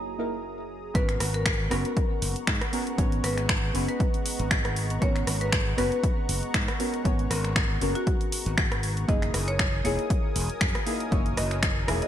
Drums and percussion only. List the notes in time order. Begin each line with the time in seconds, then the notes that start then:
0.95 kick, closed hi-hat
1.09 finger snap, closed hi-hat
1.20 cross-stick, open hi-hat
1.34 closed hi-hat
1.46 finger snap, kick, closed hi-hat
1.71 cross-stick, open hi-hat
1.85 closed hi-hat
1.97 kick, closed hi-hat
2.22 open hi-hat
2.36 closed hi-hat
2.47 finger snap, kick, closed hi-hat
2.61 cross-stick, closed hi-hat
2.73 open hi-hat
2.87 closed hi-hat
2.98 kick, closed hi-hat
3.12 closed hi-hat
3.24 cross-stick, open hi-hat
3.38 finger snap, closed hi-hat
3.49 finger snap, kick, closed hi-hat
3.75 open hi-hat
3.89 closed hi-hat
4.00 kick, closed hi-hat
4.14 closed hi-hat
4.26 open hi-hat
4.39 closed hi-hat
4.51 finger snap, kick, closed hi-hat
4.65 cross-stick, closed hi-hat
4.76 open hi-hat
4.90 closed hi-hat
5.02 kick, closed hi-hat
5.16 finger snap, closed hi-hat
5.27 cross-stick, open hi-hat
5.41 closed hi-hat
5.52 finger snap, kick, closed hi-hat
5.78 cross-stick, open hi-hat
5.92 closed hi-hat
6.04 kick, closed hi-hat
6.29 open hi-hat
6.43 closed hi-hat
6.54 finger snap, kick, closed hi-hat
6.68 cross-stick, closed hi-hat
6.80 open hi-hat
6.94 closed hi-hat
7.05 kick, closed hi-hat
7.19 closed hi-hat
7.31 cross-stick, open hi-hat
7.44 finger snap, closed hi-hat
7.56 finger snap, kick, closed hi-hat
7.81 open hi-hat
7.95 closed hi-hat
8.07 kick, closed hi-hat
8.21 closed hi-hat
8.32 open hi-hat
8.46 closed hi-hat
8.58 finger snap, kick, closed hi-hat
8.72 cross-stick, closed hi-hat
8.83 open hi-hat
8.97 closed hi-hat
9.09 kick, closed hi-hat
9.22 finger snap, closed hi-hat
9.34 cross-stick, open hi-hat
9.48 closed hi-hat
9.59 finger snap, kick, closed hi-hat
9.85 open hi-hat
9.99 closed hi-hat
10.10 kick, closed hi-hat
10.36 open hi-hat
10.50 closed hi-hat
10.61 finger snap, kick, closed hi-hat
10.75 cross-stick, closed hi-hat
10.87 open hi-hat
11.00 closed hi-hat
11.12 kick, closed hi-hat
11.26 closed hi-hat
11.37 cross-stick, open hi-hat
11.51 finger snap, closed hi-hat
11.63 finger snap, kick, closed hi-hat
11.88 cross-stick, open hi-hat
12.02 closed hi-hat